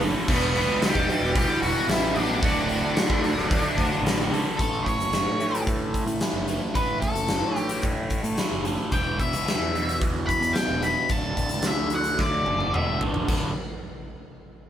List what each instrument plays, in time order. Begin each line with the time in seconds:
Already playing: distorted electric guitar A2 E3 A3 C#4 E4 A4
0.01 picked electric bass F#1, overdriven electric guitar A2 E3 A3, open hi-hat
0.28 picked electric bass E1, distorted electric guitar E2 B2 E3 G3 B3 E4, overdriven electric guitar E2 B2 E3, kick, crash
0.34 lead electric guitar B3
0.55 overdriven electric guitar E2 B2 E3, open hi-hat
0.66 picked electric bass C#2
0.82 overdriven electric guitar E2 B2 E3, lead electric guitar G4, snare, open hi-hat
0.95 picked electric bass E1, kick
1.10 overdriven electric guitar E2 B2 E3, open hi-hat
1.21 picked electric bass E1, snare
1.36 overdriven electric guitar E2 B2 E3, lead electric guitar G4, kick, open hi-hat
1.61 picked electric bass E1, overdriven electric guitar E2 B2 E3, lead electric guitar F#4, open hi-hat
1.88 picked electric bass A1, overdriven electric guitar E2 B2, lead electric guitar E4, snare, open hi-hat
1.92 overdriven electric guitar E3
2.14 picked electric bass A1, overdriven electric guitar E2 B2, lead electric guitar D4, open hi-hat
2.19 overdriven electric guitar E3
2.42 picked electric bass D1, distorted electric guitar D2 A2 D3 A3 F#4, overdriven electric guitar D2 A2, kick, open hi-hat
2.46 overdriven electric guitar D3
2.69 overdriven electric guitar D2 A2 D3, open hi-hat
2.81 picked electric bass D2
2.96 overdriven electric guitar D2 A2 D3, snare, open hi-hat
3.10 picked electric bass D2, kick
3.24 overdriven electric guitar D2 A2 D3, open hi-hat
3.36 picked electric bass D1, snare
3.51 overdriven electric guitar D2 A2 D3, kick, open hi-hat
3.77 picked electric bass D2, overdriven electric guitar D2 A2 D3, kick, open hi-hat
4.02 picked electric bass A1, overdriven electric guitar D2 A2
4.06 overdriven electric guitar D3, snare, open hi-hat
4.31 picked electric bass C#2, overdriven electric guitar D2 A2 D3, open hi-hat
4.57 picked electric bass A1, overdriven electric guitar A2 E3 A3, lead electric guitar A4, kick, closed hi-hat
4.83 picked electric bass A1, lead electric guitar C#5, kick
4.87 closed hi-hat
4.97 picked electric bass F#1, closed hi-hat
5.13 overdriven electric guitar A2 E3 A3, snare, closed hi-hat
5.25 picked electric bass A2
5.40 overdriven electric guitar A2 E3 A3, closed hi-hat
5.55 closed hi-hat
5.67 overdriven electric guitar A2 E3 A3, kick, closed hi-hat
5.94 kick, closed hi-hat
6.07 picked electric bass A2, closed hi-hat
6.21 overdriven electric guitar A2 E3 A3, snare, closed hi-hat
6.34 picked electric bass F#1
6.47 overdriven electric guitar A2 E3 A3, closed hi-hat
6.73 picked electric bass A1, overdriven electric guitar A2 E3 A3, lead electric guitar B4, kick, closed hi-hat
7.00 picked electric bass A1, lead electric guitar A4, kick, closed hi-hat
7.15 picked electric bass F#1, closed hi-hat
7.28 overdriven electric guitar A2 E3 A3, snare, closed hi-hat
7.41 picked electric bass A2
7.56 overdriven electric guitar A2 E3 A3, lead electric guitar G4, closed hi-hat
7.69 closed hi-hat
7.82 overdriven electric guitar A2 E3 A3, kick, closed hi-hat
8.10 kick, closed hi-hat
8.24 picked electric bass A2, closed hi-hat
8.38 overdriven electric guitar A2 E3 A3, snare, closed hi-hat
8.52 picked electric bass F#1
8.65 overdriven electric guitar A2 E3 A3, closed hi-hat
8.92 picked electric bass E1, overdriven electric guitar E2 B2 E3, lead electric guitar G5, kick, closed hi-hat
9.19 picked electric bass E1, lead electric guitar E5, kick, closed hi-hat
9.33 picked electric bass C#2, closed hi-hat
9.47 overdriven electric guitar E2 B2 E3, snare, closed hi-hat
9.60 picked electric bass E2
9.74 overdriven electric guitar E2 B2 E3, closed hi-hat
9.89 closed hi-hat
10.01 overdriven electric guitar E2 B2 E3, kick, closed hi-hat
10.27 lead electric guitar B5, kick, closed hi-hat
10.41 picked electric bass E2, closed hi-hat
10.53 overdriven electric guitar E2 B2 E3, lead electric guitar G5, snare, closed hi-hat
10.68 picked electric bass E1
10.83 overdriven electric guitar E2 B2 E3, lead electric guitar B5, closed hi-hat
11.09 picked electric bass D1, overdriven electric guitar D2 A2 D3, lead electric guitar A5, kick, closed hi-hat
11.37 picked electric bass D1, kick, closed hi-hat
11.49 picked electric bass C#2, closed hi-hat
11.62 overdriven electric guitar D2 A2, snare, closed hi-hat
11.67 overdriven electric guitar D3, lead electric guitar E5
11.80 picked electric bass D2
11.90 overdriven electric guitar D2 A2 D3, closed hi-hat
11.95 lead electric guitar F#5
12.04 closed hi-hat
12.18 overdriven electric guitar D2 A2 D3, lead electric guitar D5, kick, snare
12.46 picked electric bass F#1, high tom
12.61 high tom
12.73 picked electric bass E1, overdriven electric guitar D2 A2 D3, lead electric guitar E5, mid tom
13.01 picked electric bass D1, overdriven electric guitar D2 A2 D3, floor tom
13.14 floor tom
13.28 picked electric bass D1, overdriven electric guitar D2 A2 D3, kick, crash